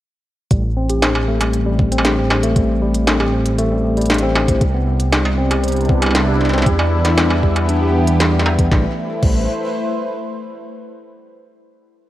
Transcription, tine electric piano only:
0.51 0.62 G3 medium
0.77 0.88 C4 loud
0.89 1.01 G4 loud
1.02 1.14 C5 medium
1.28 1.40 A3 medium
1.41 1.48 G3 medium
1.66 1.78 G3 loud
1.92 2.03 C4 medium
2.05 2.16 G4 loud
2.18 2.29 C5 medium
2.43 2.55 A3 loud
2.56 2.63 G3 medium
2.82 2.93 G3 medium
3.07 3.19 C4 medium
3.20 3.32 G4 loud
3.33 3.44 C5 medium
3.59 3.71 A3 loud
3.71 3.78 G3 medium
3.97 4.08 G3 loud
4.23 4.34 C4 loud
4.35 4.47 G4 loud
4.48 4.60 C5 medium
4.74 4.86 B3 loud
4.87 4.94 G3 medium
5.12 5.24 G3 medium
5.38 5.50 C4 loud
5.51 5.62 G4 medium
5.64 5.75 C5 medium
5.89 6.02 B3 loud
6.02 6.09 G3 medium
6.28 6.39 G3 loud
6.53 6.65 C4 loud
6.66 6.78 G4 loud
6.79 6.91 D5 medium
7.05 7.17 B3 loud
7.18 7.24 G3 medium
7.43 7.55 G3 loud
7.69 7.80 D4 loud
7.82 7.93 G4 loud
7.95 8.06 D4 medium
8.20 8.32 G3 medium
8.33 8.44 G3 medium
8.59 8.70 B3 loud
8.72 8.86 G3 medium
9.23 9.47 G3 medium

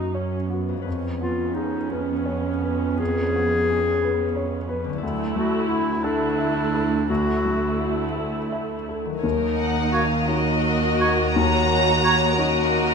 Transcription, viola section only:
0.00 0.12 D#4 soft
0.14 0.50 C#4 soft
0.50 0.85 B3 soft
0.85 4.98 B3 soft
0.85 4.98 C#4 soft
5.02 5.99 A3 soft
5.02 5.99 E4 soft
6.03 7.07 A3 medium
6.03 7.07 E4 medium
7.09 9.00 A3 soft
7.09 9.00 E4 soft
9.24 10.24 A#3 soft
9.24 10.24 D#4 soft
10.27 12.34 A#3 soft
10.27 11.35 F#4 soft
11.36 12.36 F#4 medium
12.37 12.94 A#3 medium
12.37 12.94 F#4 medium

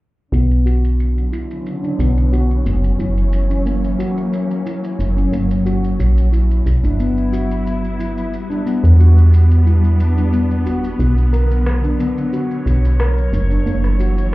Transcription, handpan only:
0.33 0.43 B3 medium
0.66 1.31 F#4 medium
1.32 1.49 E4 medium
1.83 1.98 D4 medium
1.99 2.09 B3 medium
2.32 2.98 F#4 medium
2.99 3.16 E4 medium
3.50 3.65 C#4 medium
3.66 3.76 A#3 medium
3.99 4.64 F#4 medium
4.66 4.83 E4 medium
5.17 5.32 C#4 medium
5.32 5.43 A#3 medium
5.66 6.31 F#4 medium
6.33 6.49 E4 medium
6.84 6.98 D4 medium
6.99 7.09 B3 medium
7.33 7.98 F#4 medium
7.99 8.16 E4 medium
8.50 8.65 D4 medium
8.66 8.76 B3 medium
8.99 9.64 F#4 medium
9.66 9.83 E4 medium
10.17 10.32 D4 medium
10.33 10.43 B3 medium
10.66 10.99 F#4 medium
11.33 11.50 A#4 medium
11.84 11.99 D4 medium
11.99 12.09 B3 medium
12.33 12.98 F#4 medium
13.00 13.16 A#4 medium
13.50 13.65 D4 medium
13.66 13.76 A#3 medium
14.00 14.35 F#4 medium

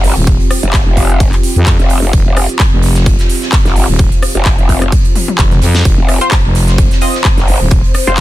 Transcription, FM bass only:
0.17 0.38 D#1 medium
1.56 1.77 F2 loud
2.13 2.24 F1 loud
2.72 3.17 F1 loud
3.89 4.10 D#1 loud
5.39 5.60 F1 loud
5.62 5.84 F2 loud
5.85 5.96 F1 loud
6.44 6.89 F1 loud
7.61 7.82 D#1 loud

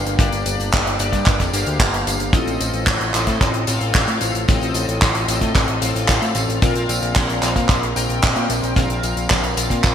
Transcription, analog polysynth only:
0.00 0.16 A#3 medium
0.00 0.16 D4 medium
0.00 0.16 G4 medium
0.00 0.16 F5 loud
0.19 0.97 A#3 medium
0.19 0.96 D4 medium
0.19 0.97 G4 medium
0.19 0.97 D5 loud
1.00 1.50 A#3 medium
1.00 1.50 D4 medium
1.00 1.50 G4 medium
1.00 1.50 D5 medium
1.53 2.31 A#3 medium
1.53 2.31 D4 medium
1.53 2.31 G4 medium
1.53 2.31 F5 loud
2.34 3.11 C4 medium
2.34 3.11 F4 medium
2.34 3.11 A4 medium
2.34 3.11 D#5 loud
3.14 3.64 C4 medium
3.14 3.64 F4 medium
3.14 3.64 A4 medium
3.14 3.64 D#5 medium
3.68 4.45 C4 medium
3.68 4.45 F4 medium
3.68 4.45 A4 medium
3.68 4.45 F5 medium
4.48 5.25 C4 medium
4.48 5.25 F4 medium
4.48 5.25 A4 medium
4.48 5.25 D#5 loud
5.28 5.79 C4 medium
5.28 5.79 F4 medium
5.28 5.79 A4 medium
5.28 5.79 D#5 medium
5.82 6.59 C4 medium
5.82 6.59 F4 medium
5.82 6.59 A4 medium
5.82 6.59 F5 loud
6.62 7.39 C4 medium
6.62 7.39 F4 medium
6.62 7.39 A#4 medium
6.62 7.39 F5 loud
7.42 7.93 C4 medium
7.42 7.93 F4 medium
7.42 7.93 A#4 medium
7.42 7.93 F5 medium
7.96 8.73 C4 medium
7.96 8.73 F4 medium
7.96 8.73 A#4 medium
7.96 8.73 G5 loud
8.77 9.54 C4 medium
8.77 9.54 F4 medium
8.77 9.54 A#4 medium
8.77 9.54 F5 loud
9.57 9.95 C4 medium
9.57 9.95 F4 medium
9.57 9.95 A#4 medium
9.57 9.95 F5 medium

